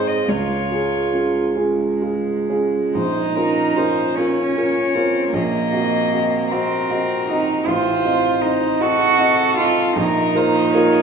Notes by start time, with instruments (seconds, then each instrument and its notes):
Already playing: grand piano G#2 C4 D#4 G#4, cello D#4
0.08 violin D#5
0.27 grand piano C#2, cello F4, violin C#5
0.71 grand piano F4 G#4
1.14 grand piano C#4 F4 G#4
1.56 cello G#3, grand piano C#4 F4 G#4
2.02 grand piano F4 G#4
2.50 grand piano C#4 F4 G#4
2.94 grand piano A#1, cello D#4, violin C5
3.36 grand piano C#4 F4 A#4, violin A#4
3.76 grand piano C#4 F4 A#4, violin C5
4.15 cello C#4, grand piano C#4 F4 A#4, violin C#5
4.56 grand piano C#4 F4 A#4
4.95 cello C4, grand piano C#4 F4 A#4
5.33 grand piano A#1, cello A#3, violin D#5
5.72 grand piano C4 F#4 D#5
6.12 grand piano C4 F#4 D#5
6.51 cello C4, grand piano C4 F#4 D#5, violin A#4
6.90 grand piano C4 F#4 D#5
7.28 grand piano C4 F#4 D#5, cello D#4
7.67 grand piano A1, cello F4, violin C5
8.05 grand piano C4 D#4 D#5
8.42 grand piano C4 D#4 D#5, cello D#4
8.80 grand piano C4 D#4 D#5, cello F#4, violin A4
9.19 grand piano C4 D#4 D#5
9.57 grand piano C4 D#4 D#5, cello F4
9.96 grand piano A#1, cello D#4, violin A#4
10.35 grand piano A#3 F4 A#4, violin C5
10.74 grand piano A#3 F4 A#4, violin C#5